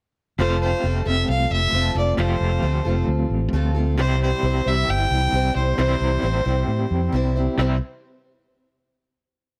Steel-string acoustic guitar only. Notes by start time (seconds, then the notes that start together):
0.39 F3 A3 C4 F4 A4
0.83 A3 C4 F4 A4
1.05 C4 F4 A4
1.73 A3 C4 F4 A4
1.95 C4 F4 A4
2.17 F3 A3 C4 F4 A4
2.62 A3 C4 F4 A4
2.85 C4 F4 A4
3.53 A3 C4 F4 A4
3.75 C4 F4 A4
3.97 C3 E3 G3 C4 E4 C5
4.43 G3 C4 E4 C5
4.65 G3 C4 E4 C5
5.32 G3 C4 E4 C5
5.55 G3 C4 E4 C5
5.78 C3 E3 G3 C4 E4 C5
6.22 G3 C4 E4 C5
6.45 G3 C4 E4 C5
7.12 G3 C4 E4 C5
7.35 G3 C4 E4 C5
7.58 C3 E3 G3 C4 E4 C5